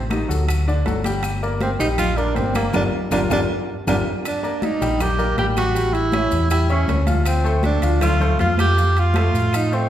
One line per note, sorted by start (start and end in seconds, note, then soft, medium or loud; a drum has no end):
0.00 0.23 A1 medium
0.10 0.25 D#3 medium
0.10 0.26 D#4 medium
0.10 0.26 G4 medium
0.10 high conga loud
0.10 high timbale medium
0.10 claves medium
0.10 maracas soft
0.28 0.82 D2 loud
0.28 0.60 F#3 medium
0.28 0.60 F#4 medium
0.28 0.60 A4 medium
0.28 high conga soft
0.28 maracas medium
0.48 high conga soft
0.48 high timbale loud
0.48 claves medium
0.48 maracas medium
0.67 0.83 D3 medium
0.67 0.83 D4 medium
0.67 0.83 D5 medium
0.67 high conga soft
0.67 maracas soft
0.86 1.74 G1 medium
0.86 1.01 F#3 medium
0.86 1.01 F#4 medium
0.86 1.02 A4 medium
0.86 high conga medium
0.86 high timbale medium
0.86 low timbale medium
0.86 maracas soft
1.04 1.36 G3 medium
1.04 1.36 G4 medium
1.04 1.36 G5 medium
1.04 high conga medium
1.04 high timbale medium
1.04 maracas medium
1.22 high conga soft
1.22 high timbale medium
1.22 claves medium
1.22 maracas medium
1.42 1.74 A#3 medium
1.42 1.73 A#4 medium
1.42 1.74 D5 medium
1.42 high conga soft
1.42 maracas soft
1.61 1.70 C4 medium
1.61 high conga loud
1.61 high timbale medium
1.61 maracas soft
1.79 2.33 A#1 medium
1.79 2.10 G3 medium
1.79 1.88 D#4 loud
1.79 2.10 G4 medium
1.79 2.11 G5 medium
1.79 high conga soft
1.79 high timbale medium
1.79 maracas medium
1.98 2.19 F4 loud
1.98 high conga soft
1.98 low conga medium
1.98 high timbale medium
1.98 claves medium
1.98 maracas medium
2.16 2.48 A#3 medium
2.16 2.36 D4 medium
2.16 2.48 A#4 medium
2.16 2.49 D5 medium
2.16 high conga soft
2.16 maracas soft
2.35 2.72 G1 medium
2.35 2.54 C4 medium
2.35 high conga medium
2.35 high timbale medium
2.35 low timbale medium
2.35 maracas soft
2.55 2.71 A#3 medium
2.55 2.73 A#3 medium
2.55 2.71 A#4 medium
2.55 2.71 D5 medium
2.55 high conga medium
2.55 high timbale medium
2.55 claves medium
2.55 maracas medium
2.73 2.88 G1 medium
2.73 2.84 D4 medium
2.73 2.86 F4 medium
2.73 2.86 G4 medium
2.73 2.86 A#4 medium
2.73 low conga loud
2.73 high timbale loud
2.73 claves loud
2.73 maracas medium
3.11 3.26 G1 loud
3.11 3.21 D4 medium
3.11 3.24 F4 loud
3.11 3.24 G4 loud
3.11 3.24 A#4 loud
3.11 low conga loud
3.11 high timbale medium
3.11 claves loud
3.11 maracas loud
3.30 3.44 G1 loud
3.30 3.41 D4 loud
3.30 3.43 F4 loud
3.30 3.43 G4 medium
3.30 3.43 A#4 medium
3.30 low conga loud
3.30 high timbale loud
3.30 claves loud
3.30 maracas loud
3.87 4.01 G1 medium
3.87 3.97 D4 medium
3.87 3.99 F4 medium
3.87 3.99 G4 loud
3.87 3.99 A#4 medium
3.87 low conga loud
3.87 high timbale loud
3.87 claves loud
3.87 maracas loud
4.25 4.61 D4 medium
4.25 high conga soft
4.25 high timbale medium
4.25 claves medium
4.25 maracas medium
4.43 4.74 A#3 medium
4.43 4.74 A#4 medium
4.43 4.75 D5 medium
4.43 high conga soft
4.43 maracas soft
4.62 5.03 D#4 loud
4.62 high conga loud
4.62 high timbale medium
4.62 maracas soft
4.81 5.34 A#1 loud
4.81 4.97 G3 medium
4.81 4.97 G4 medium
4.81 4.97 G5 medium
4.81 high conga soft
4.81 high timbale medium
4.81 maracas medium
5.00 5.16 A#3 medium
5.00 5.38 G4 loud
5.00 5.16 A#4 medium
5.00 5.16 D5 medium
5.00 high conga soft
5.00 low conga medium
5.00 high timbale medium
5.00 claves medium
5.00 maracas medium
5.19 5.34 A#3 medium
5.19 5.34 A#4 medium
5.19 5.35 D5 medium
5.19 high conga soft
5.19 low conga medium
5.19 maracas soft
5.37 6.26 A1 medium
5.37 5.69 G3 medium
5.37 5.47 G4 medium
5.37 5.69 G4 medium
5.37 5.69 G5 medium
5.37 high conga medium
5.37 high timbale medium
5.37 maracas soft
5.57 5.95 F#4 loud
5.57 high conga medium
5.57 high timbale loud
5.57 claves medium
5.57 maracas medium
5.75 6.06 G3 medium
5.75 6.06 G4 medium
5.75 6.06 G5 medium
5.75 high conga soft
5.75 maracas medium
5.93 6.50 E4 loud
5.93 high conga soft
5.93 high timbale medium
5.93 maracas soft
6.12 6.44 C#4 medium
6.12 6.44 C#5 medium
6.12 6.45 E5 medium
6.12 high conga loud
6.12 high timbale medium
6.12 claves medium
6.12 maracas soft
6.31 6.85 E2 loud
6.31 high conga soft
6.31 maracas medium
6.50 6.67 G3 medium
6.50 6.68 E4 loud
6.50 6.67 G4 medium
6.50 6.67 G5 medium
6.50 high conga soft
6.50 high timbale loud
6.50 claves medium
6.50 maracas medium
6.69 7.01 C#4 medium
6.69 7.06 C#4 loud
6.69 7.01 C#5 medium
6.69 7.01 E5 medium
6.69 high conga soft
6.69 maracas soft
6.88 7.77 D2 loud
6.88 high conga medium
6.88 high timbale medium
6.88 low timbale medium
6.88 maracas soft
7.06 7.38 F3 medium
7.06 7.38 F4 medium
7.06 7.38 F5 medium
7.06 high conga medium
7.06 high timbale medium
7.06 maracas medium
7.25 7.62 C4 medium
7.25 high conga soft
7.25 high timbale medium
7.25 claves medium
7.25 maracas medium
7.44 7.76 A3 medium
7.44 7.76 A4 medium
7.44 7.76 C5 medium
7.44 high conga soft
7.44 maracas soft
7.63 8.00 D4 loud
7.63 high conga medium
7.63 high timbale medium
7.63 maracas soft
7.82 8.36 D2 loud
7.82 7.98 F3 medium
7.82 7.98 F4 medium
7.82 7.98 F5 medium
7.82 high conga soft
7.82 high timbale medium
7.82 maracas medium
8.01 8.17 A3 medium
8.01 8.37 F4 loud
8.01 8.17 A4 medium
8.01 8.17 C5 medium
8.01 high conga soft
8.01 low conga medium
8.01 high timbale medium
8.01 claves medium
8.01 maracas medium
8.20 8.36 A3 medium
8.20 8.36 A4 medium
8.20 8.36 C5 medium
8.20 high conga soft
8.20 low conga medium
8.20 maracas soft
8.39 9.28 F2 medium
8.39 8.71 F3 medium
8.39 8.71 F4 medium
8.39 8.57 F4 loud
8.39 8.71 F5 medium
8.39 high conga medium
8.39 high timbale medium
8.39 maracas soft
8.58 9.00 G4 loud
8.58 high conga medium
8.58 high timbale medium
8.58 claves medium
8.58 maracas medium
8.77 9.08 F3 medium
8.77 9.08 F4 medium
8.77 9.09 F5 medium
8.77 high conga soft
8.77 maracas medium
8.96 9.57 F4 loud
8.96 high conga soft
8.96 high timbale medium
8.96 maracas soft
9.14 9.46 A3 medium
9.14 9.46 A4 medium
9.14 9.47 C5 medium
9.14 high conga loud
9.14 high timbale loud
9.14 claves medium
9.14 maracas soft
9.33 9.87 A2 medium
9.33 high conga soft
9.33 maracas medium
9.52 9.69 F3 medium
9.52 9.75 D#4 loud
9.52 9.69 F4 medium
9.52 9.69 F5 medium
9.52 high conga soft
9.52 high timbale loud
9.52 claves medium
9.52 maracas medium
9.71 9.89 A3 medium
9.71 9.89 C4 medium
9.71 9.89 A4 medium
9.71 9.89 C5 medium
9.71 high conga soft
9.71 maracas soft